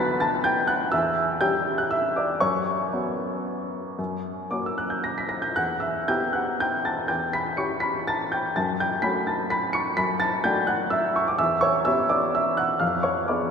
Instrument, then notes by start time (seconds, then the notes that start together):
upright piano
Already playing: D2 F#3 B3 B4 F#5 A5 B5 F#6 A6 B6
0.20 A5 A6
0.44 G5 G6
0.68 F#5 F#6
0.92 E2 E5 E6
1.41 G3 C#4 G4 G5 G6
1.78 F#6
1.91 E5 E6
2.16 D5 D6
2.40 F#2 C#5 C#6
2.93 B3 C#4 F#4
3.99 F#2
4.51 A#3 C#4 F#4 D6
4.66 E6
4.78 F#6
4.90 G6
5.04 A#6
5.18 B6
5.29 A#6
5.42 G6
5.56 E2 F#5 F#6
5.80 E5 E6
6.08 B3 E4 G4 G5 G6
6.33 F#5 F#6
6.60 G5 G6
6.85 A5 A6
7.08 E2 G5 G6
7.33 B5 B6
7.57 C#4 E4 G4 C#6 C#7
7.80 B5 B6
8.07 A5 A6
8.32 G5 G6
8.56 F#2 A5 A6
8.80 G5 G6
9.02 A3 C#4 F#4 B5 B6
9.27 A5 A6
9.50 B5 B6
9.73 C#6 C#7
9.97 F#2 B5 B6
10.20 A5 A6
10.44 A3 D4 F#4 G5 G6
10.67 F#5 F#6
10.90 E5 E6
11.16 C#6
11.28 D6
11.39 E2 E5 E6
11.61 C#5 C#6
11.85 B3 C#4 G4 E5 E6
12.09 D5 D6
12.35 E5 E6
12.57 F#5 F#6
12.80 F2 F5 F6
13.03 C#5 C#6
13.28 B3 D4 G#4 D5 D6